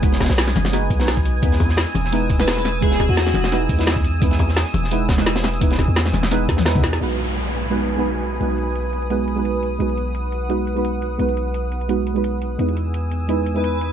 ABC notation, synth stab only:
X:1
M:4/4
L:1/16
Q:"Swing 16ths" 1/4=172
K:B
V:1 name="Synth stab"
[G,B,DFB]8 [G,B,DFB]3 [G,B,DFB]4- [G,B,DFB] | [G,B,DEB]8 [G,B,DEB]3 [G,B,DEB]4- [G,B,DEB] | [G,B,DEB]8 [G,B,DEB]3 [G,B,DEB]4- [G,B,DEB] | [G,B,DEB]8 [G,B,DEB]3 [G,B,DEB]4- [G,B,DEB] |
[G,B,DEB]8 [G,B,DEB]3 z [G,B,DEB] [G,B,DEB]3 | [G,B,DFB]8 [G,B,DFB]3 [G,B,DFB]4- [G,B,DFB] | [G,B,DFB]8 [G,B,DFB]3 [G,B,DFB]4- [G,B,DFB] | [G,B,DFB]8 [G,B,DFB]3 [G,B,DFB]4- [G,B,DFB] |
[G,B,DFB]8 [G,B,DFB]3 [G,B,DFB]4- [G,B,DFB] | [G,B,DEB]8 [G,B,DEB]3 [G,B,DEB]4- [G,B,DEB] |]